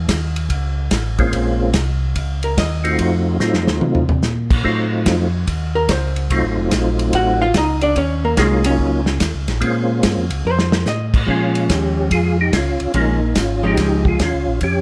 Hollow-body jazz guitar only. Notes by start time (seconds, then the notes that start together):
2.44 A#4
2.58 D#5
5.75 A#4
5.91 C5
7.15 F#4 F#5
7.42 F4 F5
7.57 D#4 D#5
7.82 D4 D5
7.97 C#4 C#5
8.25 A#3 A#4
8.39 G#3 G#4
8.66 C#4 C#5
10.47 C5
10.88 D#5
11.27 F3 G#3 C#4
12.94 F3 G#3 C#4
13.63 F3 G#3 C#4